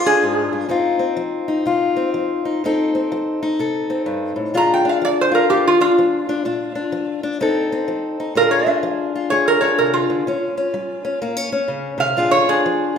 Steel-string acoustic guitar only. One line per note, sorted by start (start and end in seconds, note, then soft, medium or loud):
0.00 0.19 F2 medium
0.00 0.70 F4 soft
0.00 0.70 G#4 medium
0.06 0.69 D4 medium
0.23 0.52 G#2 medium
0.53 0.68 G2 medium
0.69 1.14 F2 medium
0.69 0.99 C4 medium
0.69 1.48 D#4 medium
0.69 1.66 F4 medium
0.99 1.95 C4 medium
1.17 1.62 F3 medium
1.48 2.44 D#4 medium
1.66 2.11 C3 medium
1.66 2.65 F4 medium
1.96 2.60 C4 medium
2.14 2.59 F3 medium
2.45 2.61 D#4 medium
2.64 3.08 F2 medium
2.64 2.94 C4 medium
2.64 3.41 D#4 medium
2.64 3.59 A4 medium
2.95 3.89 C4 medium
3.12 3.56 F3 medium
3.43 4.53 D#4 medium
3.59 4.03 C3 medium
3.59 4.53 A4 medium
3.90 4.53 C4 medium
4.06 4.35 G2 medium
4.36 4.54 A2 medium
4.54 4.98 A#2 medium
4.54 4.84 D4 medium
4.54 5.31 F4 medium
4.54 6.44 G#4 medium
4.85 5.79 D4 medium
5.02 5.46 F3 medium
5.31 5.50 F4 medium
5.50 5.94 F2 medium
5.50 7.41 F4 medium
5.81 6.28 D4 medium
5.99 6.42 F3 medium
6.29 6.44 D4 medium
6.45 6.90 A#2 medium
6.45 6.74 D4 medium
6.75 7.22 D4 medium
6.92 7.37 F3 medium
7.23 7.39 D4 medium
7.40 7.85 F2 medium
7.40 7.71 C4 medium
7.40 8.19 D#4 medium
7.40 8.35 A4 medium
7.72 8.35 C4 medium
7.88 8.33 F3 medium
8.20 8.35 D#4 medium
8.35 8.80 A#2 medium
8.35 8.65 D4 medium
8.35 9.14 F4 medium
8.35 9.31 G#4 medium
8.66 9.61 D4 medium
8.83 9.28 F3 medium
9.15 10.26 F4 medium
9.31 9.76 F2 medium
9.31 10.25 G#4 medium
9.62 10.25 D4 medium
9.79 10.09 C3 medium
10.10 10.27 D3 medium
10.27 10.71 D#3 medium
10.27 10.56 C#4 medium
10.57 11.03 C#4 medium
10.74 11.18 G3 medium
11.05 11.21 C#4 medium
11.22 11.67 A#2 medium
11.22 11.37 A#3 medium
11.37 11.51 C#4 medium
11.52 12.15 C#4 medium
11.68 11.97 C#3 medium
11.98 12.16 C3 medium
12.17 12.61 A#2 medium
12.17 12.48 D4 medium
12.17 12.96 F4 medium
12.17 12.98 G#4 medium
12.49 12.98 D4 medium
12.66 12.98 F3 medium